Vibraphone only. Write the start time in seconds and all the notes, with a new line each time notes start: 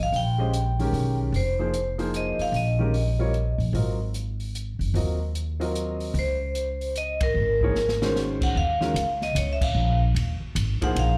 0.03 F5
0.16 G5
1.36 C5
2.16 D#5
2.42 F5
2.56 D#5
6.19 C5
6.98 D#5
7.23 A#4
8.43 F#5
8.57 F5
9.23 D#5
9.38 C#5
9.53 E5
9.62 F5
10.84 F#5
10.99 F5